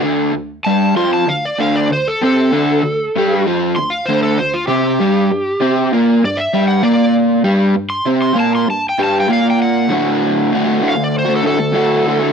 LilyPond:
<<
  \new Staff \with { instrumentName = "Electric slide guitar" } { \time 4/4 \key d \mixolydian \tempo 4 = 97 r4 a''8 c'''16 a''16 f''16 d''16 f''16 d''16 c''16 a'16 a'8~ | a'4. r8 c'''16 f''16 c''16 a'16 c''16 f'16 g'8~ | g'4. r8 d''16 e''8 fis''16 d''8 r8 | r8. c'''16 r16 c'''16 a''16 c'''16 a''16 g''16 a''16 g''16 f''16 g''16 fis''8 |
r4. f''16 d''16 c''16 a'16 a'4. | }
  \new Staff \with { instrumentName = "Overdriven electric guitar" } { \clef bass \time 4/4 \key d \mixolydian <d, d>8 d,8 <g, g>8 <f, f>8 d,8 <d, d>8 d,8 <c c'>8 | <d, d>8 d,8 <g, g>8 <f, f>8 d,8 <d, d>8 d,8 <c c'>8 | <g, g>8 g,8 <c c'>8 <bes, bes>8 g,8 <g, g>8 <bes, bes>4 | <g, g>8 g,8 <c c'>8 <bes, bes>8 g,8 <g, g>8 <bes, bes>4 |
<d, a, d a fis'>4 <d, a, d a fis'>16 <d a fis'>16 <a, d a fis'>8. <d a fis'>16 <a, d a fis'>8 <d, a, d a fis'>8 <a, d a fis'>16 <d a fis'>16 | }
>>